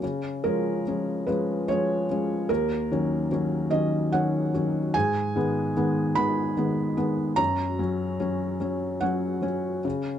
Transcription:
0.03 C#3
0.44 F3 G#3 C#4 A#4
0.87 F3 G#3 C#4
1.27 F3 G#3 C#4 B4
1.68 F3 G#3 C#4 C#5
2.11 F3 G#3 C#4
2.49 D#2 A#4
2.91 D#3 F#3 C#4
3.32 D#3 F#3 C#4
3.70 D#3 F#3 C#4 D#5
4.12 D#3 F#3 C#4 F#5
4.54 D#3 F#3 C#4
4.94 G#2 G#5
5.35 D#3 G#3 B3
5.77 D#3 G#3 B3
6.15 D#3 G#3 B3 B5
6.57 D#3 G#3 B3
6.97 D#3 G#3 B3
7.36 F#2 A#5
7.79 F#3 C#4
8.20 F#3 C#4
8.60 F#3 C#4
9.01 F#3 C#4 F#5
9.42 F#3 C#4
9.85 C#3

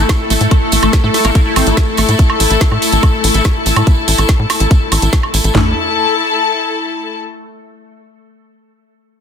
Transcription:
Already playing: A3 E4 A4 A5
0.09 kick, snare, closed hi-hat, high woodblock
0.30 A1 A3, open hi-hat, tambourine
0.41 A2, closed hi-hat, tambourine
0.51 A3, kick, closed hi-hat, tambourine, high woodblock
0.72 A1 A3, open hi-hat, tambourine
0.82 A1 A3, closed hi-hat, tambourine, high woodblock
0.93 kick, snare, closed hi-hat
1.04 A2 A3
1.14 A3, snare, open hi-hat, tambourine
1.24 A1 A#3, closed hi-hat, tambourine, high woodblock
1.35 A#3, kick, closed hi-hat, tambourine
1.46 E4
1.56 A1 C4, open hi-hat, tambourine, high woodblock
1.66 A1 E4, closed hi-hat, tambourine
1.77 kick, snare, closed hi-hat
1.97 A1 A3, open hi-hat, tambourine, high woodblock
2.09 A2, closed hi-hat, tambourine
2.19 kick, closed hi-hat
2.30 high woodblock
2.40 A1, open hi-hat, tambourine
2.50 A1, closed hi-hat, tambourine
2.61 kick, snare, closed hi-hat
2.72 A2, high woodblock
2.82 open hi-hat, tambourine
2.93 A1, closed hi-hat, tambourine
3.02 kick, closed hi-hat, tambourine, high woodblock
3.24 A1, open hi-hat, tambourine
3.34 A1, closed hi-hat, tambourine
3.45 kick, snare, closed hi-hat, high woodblock
3.66 A1, open hi-hat, tambourine
3.76 A2, closed hi-hat, tambourine, high woodblock
3.87 kick, closed hi-hat, tambourine
4.08 A1, open hi-hat, tambourine
4.18 A1, closed hi-hat, tambourine, high woodblock
4.29 kick, snare, closed hi-hat
4.39 A2
4.50 snare, open hi-hat, tambourine, high woodblock
4.60 A1, closed hi-hat, tambourine
4.71 kick, closed hi-hat, tambourine
4.92 A1, open hi-hat, tambourine, high woodblock
5.02 A1, closed hi-hat, tambourine
5.13 kick, snare, closed hi-hat
5.23 high woodblock
5.34 A1, open hi-hat, tambourine
5.44 A1, closed hi-hat, tambourine
5.55 A1 A3 E4, snare, floor tom
5.61 A4
5.67 A5

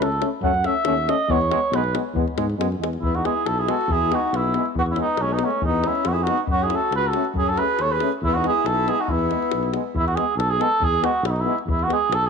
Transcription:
0.00 C#2 A4, davul high
0.12 davul high
0.20 A3 C#4, davul high
0.40 F#2 A3 C#4 F#5, davul low
0.54 davul high
0.64 A3 C#4 E5, davul high
0.85 D#2 A3 C#4, davul high
0.98 davul high
1.07 A3 C#4 D#5, davul high
1.28 E2 G#3 B3 C#5, davul low
1.41 davul high
1.50 G#3 B3, davul high
1.71 B1 G#3 B3, davul high
1.75 B4
1.84 davul high
1.94 G#3 B3, davul high
2.13 E2 G#3 B3, davul low
2.28 davul high
2.37 G#2 G#3 B3, davul high
2.50 davul high
2.58 F#2 G#3 B3, davul high
2.72 davul high
2.79 E2 G#3 B3
2.84 davul high
2.93 davul high
3.00 E2 E4, davul low
3.05 B3
3.15 D#4 F#4, davul high
3.24 G#3 B3 E4 G#4, davul high
3.45 B1 E4 A4, davul high
3.58 E4 G#4, davul high
3.67 G#3 B3 F#4 A4, davul high
3.81 davul high
3.87 E2, davul low
3.91 E4 G#4
4.02 davul high
4.10 G#3 B3 D#4, davul high
4.15 F#4
4.32 B1 B3, davul high
4.36 E4
4.44 davul high
4.54 G#3 B3, davul high
4.65 davul high
4.74 E2 B3, davul low
4.79 F#4
4.86 davul high
4.91 C#4 E4
4.96 G#3 B3, davul high
5.01 B3 D#4
5.17 B1, davul high
5.21 G#3 C#4
5.29 B3 D#4, davul high
5.39 G#3 B3, davul high
5.44 A3 C#4
5.50 davul high
5.61 E2 D#4, davul low
5.67 B3
5.84 G#3 B3 C#4 E4, davul high
5.95 davul high
6.05 F2 B3 F#4, davul high
6.12 E4 G#4, davul high
6.23 D#4 F#4
6.27 G#3 B3, davul high
6.38 davul high
6.47 F#2 F#4, davul low
6.52 C#4
6.59 G#4, davul high
6.67 C#4 E4, davul high
6.73 A3 F#4 A4
6.91 C#2, davul high
6.96 F#4 B4
7.03 davul high
7.07 F#4 A4
7.13 A3 C#4, davul high
7.25 davul high
7.34 F#2, davul low
7.38 C#4 G#4
7.46 A4, davul high
7.51 F#4
7.57 A3 C#4 B4, davul high
7.62 G#4
7.79 D#2 C#5, davul high
7.83 A4
7.90 G#4 B4, davul high
8.00 A3 C#4, davul high
8.12 davul high
8.21 E2 E4, davul low
8.27 B3
8.34 D#4 F#4, davul high
8.44 G#3 B3 G#4, davul high
8.49 E4
8.64 B1 A4, davul high
8.71 E4
8.87 G#3 B3 G#4, davul high
8.91 E4
8.98 D#4 F#4, davul high
9.08 E2 E4, davul low
9.13 B3
9.19 davul high
9.30 G#3 B3, davul high
9.42 davul high
9.52 B1, davul high
9.63 davul high
9.72 G#3 B3, davul high
9.93 E2 E4, davul low
10.07 F#4, davul high
10.15 G#3 B3 G#4, davul high
10.36 B1 A4, davul high
10.50 G#4, davul high
10.59 G#3 B3 A4, davul high
10.72 davul high
10.79 E2, davul low
10.84 G#4
10.94 davul high
11.01 G#3 B3 F#4, davul high
11.22 B1 E4, davul high
11.30 D#4
11.36 davul high
11.41 B3 E4
11.46 G#3
11.58 davul high
11.65 E2, davul low
11.71 E4
11.79 F#4, davul high
11.86 B3, davul high
11.91 G#3 G#4
12.09 B1, davul high
12.14 A4
12.21 davul high
12.26 G#4

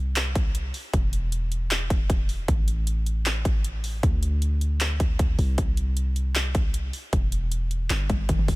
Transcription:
Already playing: C2
0.16 clap, closed hi-hat
0.35 kick, closed hi-hat
0.55 closed hi-hat
0.74 open hi-hat
0.93 E1, kick, closed hi-hat
1.13 closed hi-hat
1.32 closed hi-hat
1.52 closed hi-hat
1.71 clap, closed hi-hat
1.90 kick, closed hi-hat
2.10 kick, closed hi-hat
2.29 open hi-hat
2.48 A1, kick, closed hi-hat
2.68 closed hi-hat
2.87 closed hi-hat
3.06 closed hi-hat
3.26 clap, closed hi-hat
3.45 kick, closed hi-hat
3.64 closed hi-hat
3.84 open hi-hat
4.03 D2, kick, closed hi-hat
4.23 closed hi-hat
4.42 closed hi-hat
4.61 closed hi-hat
4.81 clap, closed hi-hat
5.00 kick, closed hi-hat
5.19 kick, closed hi-hat
5.39 C2, open hi-hat
5.58 kick, closed hi-hat
5.77 closed hi-hat
5.97 closed hi-hat
6.16 closed hi-hat
6.35 clap, closed hi-hat
6.55 kick, closed hi-hat
6.74 closed hi-hat
6.93 open hi-hat
7.13 E1, kick, closed hi-hat
7.32 closed hi-hat
7.52 closed hi-hat
7.71 closed hi-hat
7.90 G1, clap, closed hi-hat
8.10 kick, closed hi-hat, high tom
8.29 kick, closed hi-hat, mid tom
8.39 mid tom
8.48 kick, open hi-hat

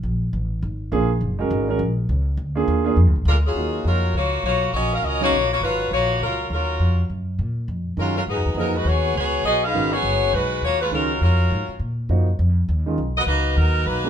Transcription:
0.03 A#1
0.33 A1
0.62 G#1
0.92 A#1 A#3 D4 F4 G#4
1.21 F#1
1.39 G#3 C#4 F#4 A#4
1.51 G#1
1.68 G#3 C#4 F#4 A#4
1.79 A#1
2.09 C#2
2.37 D2
2.55 A#3 D4 F4 G#4
2.68 D#2
2.85 A#3 D4 F4 G#4
2.96 F2
3.07 D2
3.16 A#1
3.25 D2 G#3 D4 F4 A#4
3.46 F#3 C#4 F4 G#4
3.55 D#2 A#3 D#4 F4 F#4
3.85 F2 F#3 C#4 F4 A#4
4.14 C#2 A#3 F4 F#4 C#5
4.43 B1 A#3 F4 F#4 C#5
4.72 A#1 C#4 F#4 A#4 C#5 D#5
4.94 C#4 F#4 A#4 F5
5.02 C#2 C#4 F#4 A#4 D#5
5.21 C#3 F#3 A#3 B3 D#4 F4 F#4 C#5
5.32 A#1
5.52 A#3 F4 F#4 C#5
5.61 G#1 F#3 C#4 F4 B4
5.91 A#1 A#3 F4 F#4 C#5
6.21 C#2 F#3 C#4 F4 A#4
6.50 D#2 F#3 C#4 F4 A#4
6.79 F2
7.10 F#2
7.39 A#2
7.68 F2
7.97 F#2 D#3 F#3 G#3 C#4 F4 A#4
8.17 F#3 C#4 F4 A#4
8.27 G#2 F#3 B3 D#4 G#4
8.36 F#2
8.45 D#2
8.55 F2 F3 A#3 D#4 G#4
8.59 F#3 B3 D#4 A#4
8.75 G#3 D#4 F#4 B4
8.85 D#2 B3 F#4 G#4 C#5
9.14 C#2 B3 F#4 G#4 C#5
9.44 B1 B3 F#4 G#4 D#5
9.64 D#4 G#4 B4 F5
9.73 G#1 D#3 G#3 C#4 F#4
9.92 B3 F#4 G#4 C#5
10.03 F#1
10.33 B1 G#3 D#4 F#4 B4
10.62 D#2 A#3 F4 F#4 C#5
10.81 G#3 C#4 F4 B4
10.91 C#2 D#3 F#3 G#3 C#4 F4 A#4
11.21 F2 F#3 C#4 F4 A#4
11.50 G#2
11.69 muted upright bass stroke
11.79 A#2
12.09 F#2 F3 A#3 D#4 F#4
12.39 F2
12.69 D#2
12.86 D#3 G#3 C#4 F4
12.98 B1
13.17 B3 F#4 A#4 D#5
13.26 C#2 F#3 A#3 D#4 B4
13.57 D#2 F#3 B3 D#4 A#4
13.86 B1 F#3 A#3 D#4 B4
14.04 G#3 A#3 D4 F4

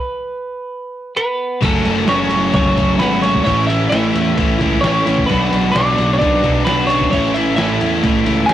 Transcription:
Already playing: B4
1.17 B3 B4
1.61 F#1 F#2 C#3 F#3 A3 C#4 F#4 A4, kick, crash, ride
1.83 F#1 A3 C#4 F#4, ride
1.88 F#3
2.07 F#1 F#2 C#3 F#3 A3 C#4 F#4 C#5, snare, ride
2.29 F#1 A3 C#4 F#4, ride
2.34 F#3
2.52 F#1 F#2 C#3 F#3 A3 C#4 F#4 C#5, kick, ride
2.66 snare
2.76 F#1 F#3 A3 C#4 F#4, kick, ride
2.98 G#1 C#3 F#3 A3 C#4 F#4 B4, snare, ride
3.02 B3
3.20 A3 C#4 F#4 C#5, ride
3.25 F#3 C#4
3.35 kick
3.43 A1 A2 E3 A3 C#4 E4 C#5, kick, ride
3.67 C#4 E4 E5, ride
3.71 A3
3.89 A1 A2 E3 A3 C#4 E4 E5, snare, ride
4.13 E2 A3 C#4 E4, ride
4.37 A1 A2 E3 A3 C#4 E4, kick, ride
4.59 C#2 A2 E3 A3 C#4 E4, kick, ride
4.81 A1 E3 A3 C#4 C#5, snare, ride
4.85 E4
5.04 A1 A3 C#4 E4, ride
5.18 kick
5.26 B1 B2 F#3 B3 D4 B4, kick, ride
5.31 F#4
5.50 B1 F#3 B3 D4 F#4, ride
5.72 B1 B2 F#3 B3 D4 F#4 D5
5.76 snare, ride
5.95 B1 B3 D4 F#4, ride
6.00 F#3
6.13 C#5
6.18 B1 B2 F#3 B3 D4 D5, kick, ride
6.22 D4 F#4
6.33 snare
6.41 B1 B2 F#3 B3 D4 F#4, kick, ride
6.64 B1 F#3 B3 D4 F#4 B4, snare, ride
6.69 B3
6.87 B3 C#4 D4 F#4 C#5, ride
6.91 F#3
7.01 kick
7.10 A1 A2 E3 A3 C#4 E4 C#5, kick, ride
7.14 C#4
7.33 A3 C#4 E4 E5, ride
7.38 E4
7.56 A1 A2 E3 A3 C#4 E4 E5, snare, ride
7.80 E2 A3 C#4 E4, ride
8.02 A1 A2 E3 A3 C#4 E4, kick, ride
8.25 C#2 A2 E3 A3 C#4 E4, ride
8.46 A1 E3 A3 G#4 G#5, snare, ride
8.51 C#4

